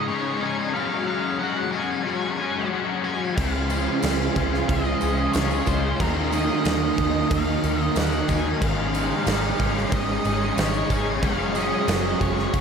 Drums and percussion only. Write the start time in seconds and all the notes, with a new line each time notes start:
3.38 kick, crash
3.70 tambourine, crash
4.02 snare, tambourine, crash
4.36 kick, crash
4.54 snare
4.68 kick, tambourine, crash
4.85 tambourine
5.01 tambourine, crash
5.17 tambourine
5.33 snare, tambourine, crash
5.50 tambourine
5.66 kick, tambourine, crash
6.00 kick, crash
6.32 tambourine, crash
6.49 tambourine
6.65 snare, tambourine, crash
6.98 kick, crash
7.31 kick, tambourine, crash
7.47 tambourine
7.64 tambourine, crash
7.80 tambourine
7.96 snare, tambourine, crash
8.12 tambourine
8.28 kick, tambourine, crash
8.62 kick, crash
8.94 tambourine, crash
9.10 tambourine
9.26 snare, tambourine, crash
9.60 kick, crash
9.78 snare
9.92 kick, tambourine, crash
10.08 tambourine
10.25 tambourine, crash
10.41 tambourine
10.58 snare, tambourine, crash
10.74 tambourine
10.90 kick, tambourine, crash
11.23 kick, tambourine, crash
11.39 tambourine
11.55 tambourine, crash
11.72 tambourine
11.88 snare, tambourine, crash
12.04 tambourine
12.21 kick, tambourine, crash
12.37 snare, tambourine
12.54 kick, tambourine, crash